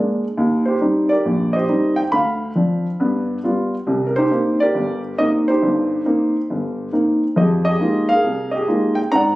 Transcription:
Already playing: G#3 A#3 D4
0.37 D#2
0.66 G4 C5
0.81 G3 C4 D#4
1.09 G4 A#4 D5
1.25 A#1
1.53 G4 C5 D#5
1.68 G3 C4 D#4
1.96 G5
2.12 D2 F5 B5
2.55 F3 C4 D4
3.00 G2 B3
3.44 G3 B3 F4
3.87 C2 C3
4.07 A#4
4.16 D#4 G4 C5
4.31 A#3 C4 D#4
4.60 G4 A#4 D5
4.75 G1
5.18 A#3 C4 D#4 D#5
5.48 D#4 G4 C5
5.62 G1 G2
6.05 A#3 C4 D#4
6.50 G1
6.92 A#3 C4 D#4
7.36 F2 F3 G4 G#4 D#5
7.65 G4 G#4 D#5
7.80 G#3 A#3 D#4 F4 G4
8.09 G#4 A#4 F5
8.24 C2
8.51 G4 G#4 D#5
8.68 G#3 A#3 D#4 F4 G4
8.95 G5
9.12 G#2 C4 D5 F#5 A#5

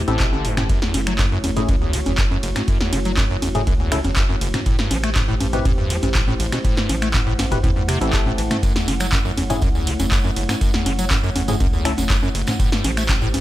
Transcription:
Already playing: A3 E4 G4 C5
0.08 A1 A2 C4 E4 G4 A4, closed hi-hat, high conga
0.19 B2, kick, clap, closed hi-hat
0.33 D3, high conga
0.45 F#1 G2, open hi-hat
0.57 A2, finger snap, snare, closed hi-hat, mid tom, high conga
0.69 F#2 F#4 C#5, kick, closed hi-hat, ride
0.82 E2, snare
0.94 F#1 E3, open hi-hat, ride, high conga
1.07 F#3, finger snap, closed hi-hat
1.19 F#2, kick, clap, closed hi-hat, mid tom, ride, high conga
1.32 F#1 F#2
1.44 E2, open hi-hat, ride, high conga
1.56 G#2 A3 C#4 E4 G#4, closed hi-hat, mid tom
1.69 C#2 F#2, kick, closed hi-hat, ride, high conga
1.82 E2
1.93 E3, open hi-hat, ride
2.06 F#1 E2, closed hi-hat, high conga
2.18 F#2, kick, clap, closed hi-hat, ride
2.31 F#2, high conga
2.43 F#1, open hi-hat, ride
2.56 G#2, finger snap, snare, closed hi-hat, high conga
2.68 F#2, kick, closed hi-hat, ride
2.81 E2, snare
2.93 F#1 E3, open hi-hat, ride, high conga
3.05 F#3, closed hi-hat
3.17 F#2, kick, clap, closed hi-hat, mid tom, ride, high conga
3.30 F#1 F#2
3.42 E2, open hi-hat, ride, high conga
3.55 G#2 A3 C#4 E4 G#4, closed hi-hat, mid tom
3.67 C#2 F#2, kick, closed hi-hat, ride, high conga
3.80 E2
3.92 E3 A3 C#4 E4 A4, finger snap, open hi-hat, ride
4.04 F#1 E2, closed hi-hat, high conga
4.16 F#2, kick, clap, closed hi-hat, ride
4.29 F#2, high conga
4.41 F#1, open hi-hat, ride
4.54 G#2, finger snap, snare, closed hi-hat, mid tom, high conga
4.66 A2 A3 E4 G4 C5, kick, closed hi-hat, ride
4.79 G2, snare
4.91 A1 G3, open hi-hat, ride, high conga
5.04 A3, finger snap, closed hi-hat
5.15 A2, kick, clap, closed hi-hat, mid tom, ride, high conga
5.28 A1 A2
5.40 G2, open hi-hat, ride, high conga
5.53 B2 C4 E4 G4 B4, closed hi-hat, mid tom
5.65 E2 A2, kick, closed hi-hat, ride, high conga
5.78 G2
5.90 G3, open hi-hat, ride
6.03 A1 G2, closed hi-hat, high conga
6.14 A2, kick, clap, closed hi-hat, ride
6.28 A2, high conga
6.40 A1, open hi-hat, ride
6.52 B2, finger snap, snare, closed hi-hat, high conga
6.64 A2 F#5, kick, closed hi-hat, ride
6.77 G2, snare, clap
6.89 A1 G3, open hi-hat, ride, high conga
7.02 A3, finger snap, closed hi-hat
7.14 A2, kick, clap, closed hi-hat, mid tom, ride, high conga
7.27 A1 A2
7.39 G2, snare, open hi-hat, ride, high conga
7.51 B2 C4 E4 G4 B4, kick, closed hi-hat, mid tom
7.63 E2 A2, kick, closed hi-hat, ride, high conga
7.76 G2
7.88 C3, finger snap, open hi-hat, ride
8.01 A1 C4 E4 G4 A4, closed hi-hat, high conga
8.13 A2, kick, clap, closed hi-hat, ride
8.26 A2, high conga
8.38 A1 E3, open hi-hat, ride
8.51 A3, finger snap, snare, closed hi-hat, mid tom, high conga
8.63 F#2 C#5, kick, closed hi-hat, ride, tambourine
8.75 E2, snare, tambourine
8.88 F#1 E3, open hi-hat, ride, high conga
9.00 F#3, finger snap, closed hi-hat, tambourine
9.12 F#2, kick, clap, closed hi-hat, mid tom, ride, tambourine, high conga
9.25 F#1 F#2, tambourine
9.37 E2, open hi-hat, ride, high conga
9.50 G#2 A3 C#4 E4 G#4, closed hi-hat, mid tom, tambourine
9.61 C#2 F#2, kick, closed hi-hat, ride, tambourine, high conga
9.75 E2, tambourine
9.87 E3, open hi-hat, ride
9.99 F#1 E2, closed hi-hat, tambourine, high conga
10.11 F#2, kick, clap, closed hi-hat, ride, tambourine
10.24 F#2, tambourine, high conga
10.36 F#1, open hi-hat, ride
10.49 G#2, finger snap, snare, closed hi-hat, tambourine, high conga
10.61 F#2, kick, closed hi-hat, ride, tambourine
10.73 E2, snare, tambourine
10.86 F#1 E3, open hi-hat, ride, high conga
10.99 F#3, closed hi-hat, tambourine
11.10 F#2, kick, clap, closed hi-hat, mid tom, ride, tambourine, high conga
11.23 F#1 F#2, tambourine
11.35 E2, open hi-hat, ride, high conga
11.48 G#2 A3 C#4 E4 G#4, closed hi-hat, mid tom, tambourine
11.60 C#2 F#2, kick, closed hi-hat, ride, tambourine, high conga
11.73 E2, tambourine
11.85 E3 A3 C#4 E4 A4, finger snap, open hi-hat, ride
11.98 F#1 E2, closed hi-hat, tambourine, high conga
12.10 F#2, kick, clap, closed hi-hat, ride, tambourine
12.23 F#2, tambourine, high conga
12.35 F#1, open hi-hat, ride
12.47 G#2, finger snap, snare, closed hi-hat, mid tom, tambourine, high conga
12.59 A2 E4 G4 C5, kick, closed hi-hat, ride, tambourine
12.72 G2, snare, tambourine
12.84 A1 G3, open hi-hat, ride, high conga
12.97 A3, finger snap, closed hi-hat, tambourine
13.09 A2, kick, clap, closed hi-hat, mid tom, ride, tambourine, high conga
13.22 A1 A2, tambourine
13.34 G2, open hi-hat, ride, high conga

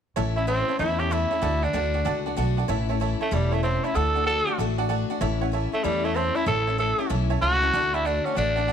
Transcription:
0.16 A1 A2 E3 A3 C#4 E4 C#5 E5 A5
0.36 A3 C#4 E4 C#5 E5 A5
0.47 A2 E3 A3 C4 C#4 E4 C#5 E5 A5
0.68 A3 C#4 E4 C#5 E5 A5
0.79 E2 E3 A3 C#4 E4 C#5 E5 A5
0.99 A3 C#4 E4 G4 C#5 E5 A5
1.10 A2 E3 A3 C#4 E4 C#5 E5 A5
1.31 A3 C#4 E4 C#5 E5 A5
1.42 D2 D3 A3 D4 F#4 D5 F#5 A5
1.62 A3 D4 F#4 D5 F#5 A5
1.73 D2 D3 A3 D4 F#4 D5 F#5 A5
1.94 A3 D4 F#4 D5 F#5 A5
2.05 C#2 D3 A3 D4 F#4 D5 F#5 A5
2.26 A3 D4 F#4 D5 F#5 A5
2.37 B1 D3 A3 D4 F#4 D5 F#5 A5
2.57 A3 D4 F#4 D5 F#5 A5
2.68 A1 A2 E3 A3 C#4 E4 C#5 E5 A5
2.89 A3 C#4 E4 C#5 E5 A5
3.00 E3 A3 C#4 E4 C#5 E5 A5
3.21 A3 C#4 E4 C#5 E5 A5
3.31 E1 A2 E3 G3 A3 C#4 E4 C#5 E5 A5
3.52 A3 C#4 E4 C#5 E5 A5
3.63 E3 A3 C4 C#4 E4 C#5 E5 A5
3.84 A3 C#4 E4 C#5 E5 A5
3.94 D2 D3 A3 D4 F#4 A4 D5 F#5 A5
4.14 A3 D4 F#4 D5 F#5 A5
4.26 D3 A3 D4 F#4 A4 D5 F#5 A5
4.46 A3 D4 F#4 D5 F#5 A5
4.58 A1 D3 A3 D4 F#4 D5 F#5 A5
4.78 A3 D4 F#4 D5 F#5 A5
4.89 D3 A3 D4 F#4 D5 F#5 A5
5.10 A3 D4 F#4 D5 F#5 A5
5.21 A1 A2 E3 A3 C#4 E4 C#5 E5 A5
5.41 A3 C#4 E4 C#5 E5 F#5
5.52 E3 A3 C#4 E4 C#5 E5 A5
5.72 A3 C#4 E4 C#5 E5 A5
5.83 E2 A2 E3 G3 A3 C#4 E4 C#5 E5 A5
6.04 A3 C#4 E4 C#5 E5 A5
6.15 E3 A3 C4 C#4 E4 C#5 E5 A5
6.35 A3 C#4 E4 C#5 E5 A5
6.46 A1 A2 E3 A3 C#4 E4 A4 C#5 E5 A5
6.67 A3 C#4 E4 C#5 E5 A5
6.78 E3 A3 C#4 E4 A4 C#5 E5 A5
6.98 A3 C#4 E4 C#5 E5 A5
7.09 B1 A2 E3 A3 C#4 E4 C#5 E5 A5
7.30 A3 C#4 E4 C#5 E5 A5
7.41 C#2 E3 A3 C#4 E4 F#4 C#5 E5 A5
7.62 A3 C#4 E4 C#5 E5 A5
7.73 D2 D3 A3 D4 F#4 D5 F#5 A5
7.94 A3 D4 E4 F#4 D5 F#5 A5
8.04 D3 A3 D4 F#4 D5 F#5 A5
8.25 A3 C#4 D4 F#4 D5 F#5 A5
8.35 A1 D3 A3 D4 F#4 D5 F#5 A5
8.56 A3 D4 F#4 D5 F#5 A5
8.67 D3 A3 D5 F#5 A5

